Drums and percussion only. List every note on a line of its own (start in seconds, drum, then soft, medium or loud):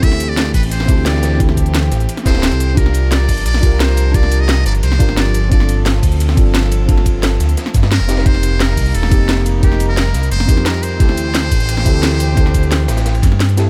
0.02 kick loud
0.02 closed hi-hat loud
0.02 ride loud
0.12 snare soft
0.20 closed hi-hat medium
0.20 ride medium
0.20 shaker medium
0.37 snare loud
0.37 closed hi-hat loud
0.37 ride medium
0.45 snare soft
0.54 kick medium
0.54 closed hi-hat medium
0.54 open hi-hat medium
0.54 shaker medium
0.63 closed hi-hat soft
0.71 closed hi-hat loud
0.71 ride medium
0.80 snare medium
0.89 kick loud
0.89 closed hi-hat medium
0.89 ride medium
0.89 shaker medium
0.97 ride soft
1.05 snare loud
1.05 closed hi-hat medium
1.05 ride medium
1.14 snare medium
1.23 snare loud
1.23 closed hi-hat medium
1.23 ride medium
1.23 shaker medium
1.32 snare soft
1.40 kick loud
1.40 closed hi-hat medium
1.40 ride medium
1.49 snare soft
1.57 kick medium
1.57 closed hi-hat medium
1.57 ride medium
1.57 shaker medium
1.66 closed hi-hat soft
1.74 snare loud
1.74 closed hi-hat loud
1.74 ride medium
1.92 snare medium
1.92 closed hi-hat medium
1.92 ride medium
1.92 shaker medium
2.00 closed hi-hat soft
2.00 shaker soft
2.09 closed hi-hat loud
2.09 ride medium
2.17 snare medium
2.17 shaker soft
2.26 kick loud
2.26 snare soft
2.26 snare loud
2.26 closed hi-hat medium
2.26 ride medium
2.26 shaker medium
2.34 snare medium
2.34 snare soft
2.34 ride medium
2.38 snare medium
2.38 ride medium
2.43 snare loud
2.43 closed hi-hat medium
2.43 ride medium
2.52 closed hi-hat soft
2.60 closed hi-hat medium
2.60 ride medium
2.60 shaker medium
2.69 ride soft
2.77 kick loud
2.77 closed hi-hat loud
2.77 ride loud
2.86 snare medium
2.94 closed hi-hat medium
2.94 ride medium
2.94 ride bell medium
2.94 shaker medium
3.11 snare loud
3.11 closed hi-hat loud
3.11 ride medium
3.20 snare soft
3.29 kick medium
3.29 closed hi-hat medium
3.29 open hi-hat medium
3.29 ride bell medium
3.29 shaker medium
3.37 closed hi-hat soft
3.46 closed hi-hat loud
3.46 ride medium
3.54 snare soft
3.54 snare medium
3.63 kick loud
3.63 closed hi-hat medium
3.63 ride medium
3.63 ride bell medium
3.63 shaker medium
3.72 ride soft
3.80 snare loud
3.80 closed hi-hat loud
3.80 ride loud
3.89 snare medium
3.97 closed hi-hat medium
3.97 ride medium
3.97 ride bell medium
3.97 shaker medium
4.14 kick loud
4.14 closed hi-hat loud
4.14 ride medium
4.23 snare medium
4.31 closed hi-hat medium
4.31 ride medium
4.31 ride bell medium
4.31 shaker medium
4.48 snare loud
4.48 closed hi-hat loud
4.48 ride loud
4.66 snare medium
4.66 closed hi-hat medium
4.66 ride medium
4.66 ride bell medium
4.66 shaker medium
4.75 closed hi-hat soft
4.75 shaker soft
4.83 closed hi-hat loud
4.83 ride loud
4.92 snare medium
5.00 kick loud
5.00 closed hi-hat medium
5.00 ride medium
5.00 ride bell medium
5.00 shaker medium
5.09 snare soft
5.17 snare loud
5.17 closed hi-hat medium
5.17 ride medium
5.34 closed hi-hat medium
5.34 ride medium
5.34 ride bell medium
5.34 shaker medium
5.44 ride soft
5.52 kick loud
5.52 closed hi-hat medium
5.52 ride medium
5.60 snare medium
5.69 closed hi-hat medium
5.69 ride medium
5.69 ride bell medium
5.69 shaker medium
5.85 snare loud
5.85 closed hi-hat medium
5.85 ride loud
5.94 snare soft
6.03 kick medium
6.03 closed hi-hat medium
6.03 open hi-hat medium
6.03 ride bell medium
6.03 shaker medium
6.12 closed hi-hat soft
6.20 closed hi-hat medium
6.20 ride medium
6.29 snare medium
6.37 kick loud
6.37 closed hi-hat medium
6.37 ride medium
6.37 ride bell medium
6.37 shaker medium
6.46 ride soft
6.54 snare loud
6.54 closed hi-hat medium
6.54 ride medium
6.63 snare medium
6.72 closed hi-hat medium
6.72 ride medium
6.72 ride bell medium
6.72 shaker medium
6.89 kick loud
6.89 closed hi-hat medium
6.89 ride loud
6.97 snare soft
7.06 kick medium
7.06 closed hi-hat medium
7.06 ride medium
7.06 ride bell medium
7.06 shaker medium
7.23 snare loud
7.23 closed hi-hat medium
7.23 ride loud
7.40 snare medium
7.40 closed hi-hat medium
7.40 ride medium
7.40 ride bell medium
7.40 shaker medium
7.49 closed hi-hat soft
7.49 shaker soft
7.57 snare medium
7.57 closed hi-hat medium
7.57 ride medium
7.66 snare medium
7.74 kick loud
7.74 snare medium
7.74 closed hi-hat medium
7.74 ride medium
7.74 ride bell medium
7.74 shaker medium
7.83 snare loud
7.83 snare soft
7.83 ride medium
7.92 snare loud
7.92 closed hi-hat medium
8.00 snare soft
8.00 ride medium
8.09 snare loud
8.09 closed hi-hat medium
8.09 ride medium
8.09 ride bell medium
8.09 shaker medium
8.17 snare loud
8.17 ride medium
8.26 kick loud
8.26 closed hi-hat medium
8.26 ride loud
8.35 snare soft
8.43 closed hi-hat medium
8.43 ride medium
8.43 ride bell medium
8.43 shaker medium
8.60 snare loud
8.60 closed hi-hat medium
8.60 ride medium
8.69 snare soft
8.77 kick medium
8.77 closed hi-hat medium
8.77 open hi-hat medium
8.77 ride bell medium
8.77 shaker medium
8.86 closed hi-hat soft
8.95 closed hi-hat medium
8.95 ride medium
9.02 snare soft
9.02 snare medium
9.12 kick loud
9.12 closed hi-hat medium
9.12 ride medium
9.12 ride bell medium
9.12 shaker medium
9.21 ride soft
9.29 snare loud
9.29 closed hi-hat medium
9.29 ride medium
9.38 snare medium
9.46 closed hi-hat medium
9.46 ride medium
9.46 ride bell medium
9.46 shaker medium
9.63 kick loud
9.63 closed hi-hat loud
9.63 ride medium
9.72 snare soft
9.80 closed hi-hat medium
9.80 ride medium
9.80 ride bell medium
9.80 shaker medium
9.97 snare loud
9.97 closed hi-hat medium
9.97 ride medium
10.14 snare medium
10.14 closed hi-hat medium
10.14 ride medium
10.14 ride bell medium
10.14 shaker medium
10.23 closed hi-hat soft
10.23 shaker soft
10.32 closed hi-hat medium
10.32 ride medium
10.40 snare medium
10.49 kick loud
10.49 closed hi-hat medium
10.49 ride medium
10.49 ride bell medium
10.49 shaker medium
10.57 snare soft
10.65 snare loud
10.65 closed hi-hat medium
10.65 ride medium
10.83 closed hi-hat medium
10.83 ride medium
10.83 ride bell medium
10.83 shaker medium
10.91 ride soft
11.00 kick loud
11.00 closed hi-hat medium
11.00 ride medium
11.09 snare soft
11.17 closed hi-hat medium
11.17 ride medium
11.17 ride bell medium
11.17 shaker medium
11.34 snare loud
11.34 closed hi-hat loud
11.34 ride medium
11.43 snare soft
11.52 kick medium
11.52 closed hi-hat medium
11.52 open hi-hat medium
11.52 ride bell medium
11.52 shaker medium
11.60 closed hi-hat soft
11.68 closed hi-hat loud
11.68 ride medium
11.77 snare medium
11.86 kick loud
11.86 closed hi-hat medium
11.86 ride medium
11.86 ride bell medium
11.86 shaker medium
11.94 ride soft
12.03 snare loud
12.03 closed hi-hat loud
12.03 ride medium
12.12 snare medium
12.20 closed hi-hat medium
12.20 ride medium
12.20 ride bell medium
12.20 shaker medium
12.37 kick loud
12.37 closed hi-hat medium
12.37 ride medium
12.46 snare soft
12.54 kick medium
12.54 closed hi-hat medium
12.54 ride medium
12.54 ride bell medium
12.54 shaker medium
12.63 closed hi-hat soft
12.71 snare loud
12.71 closed hi-hat loud
12.71 ride medium
12.88 snare loud
12.88 closed hi-hat medium
12.88 ride medium
12.88 ride bell medium
12.88 shaker medium
12.97 snare loud
12.97 closed hi-hat soft
12.97 ride medium
12.97 shaker soft
13.05 snare loud
13.05 closed hi-hat loud
13.05 ride medium
13.15 ride medium
13.15 shaker soft
13.23 kick loud
13.23 snare soft
13.23 closed hi-hat medium
13.23 ride medium
13.23 ride bell medium
13.23 shaker medium
13.32 snare soft
13.40 snare loud
13.40 closed hi-hat loud
13.40 ride medium
13.49 closed hi-hat soft
13.57 snare loud
13.57 closed hi-hat medium
13.57 ride medium
13.57 ride bell medium
13.57 shaker medium
13.66 snare soft